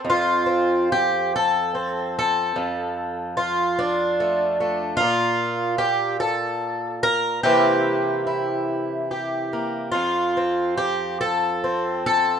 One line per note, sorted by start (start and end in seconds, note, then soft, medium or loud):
0.00 0.46 C4 soft
0.04 2.55 F2 medium
0.10 0.92 F4 medium
0.46 1.73 C4 soft
0.92 1.33 G4 medium
1.36 2.17 A4 medium
1.75 2.57 C4 soft
2.19 3.37 A4 loud
2.56 4.99 F2 medium
3.37 4.59 F4 medium
3.79 5.00 D4 medium
4.20 4.59 A3 soft
4.60 4.95 A3 soft
4.97 7.43 A#2 medium
4.97 5.78 F4 loud
5.78 6.20 G4 medium
6.20 7.02 A4 medium
7.03 7.43 A#4 loud
7.43 9.89 C3 medium
7.43 9.90 E3 medium
7.43 9.52 A#3 soft
7.43 8.25 E4 soft
7.43 9.09 G4 medium
8.27 9.90 E4 soft
9.11 9.90 G4 soft
9.53 9.90 A#3 soft
9.92 12.40 F2 medium
9.92 10.77 F4 medium
10.37 11.63 C4 soft
10.77 11.20 G4 medium
11.21 12.04 A4 medium
11.64 12.40 C4 soft
12.06 12.40 A4 medium